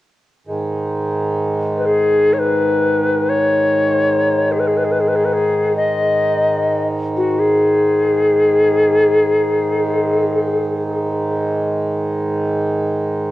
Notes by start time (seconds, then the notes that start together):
0.47 G#2 D#3
1.78 B4
1.86 G#4
2.33 C#5
2.39 B4
3.29 C#5
4.52 G#4
4.59 B4
4.67 G#4
4.77 B4
4.84 G#4
4.92 B4
5.00 G#4
5.08 B4
5.16 G#4
5.25 B4
5.33 G#4
5.77 D#5
7.17 F#4
7.39 G#4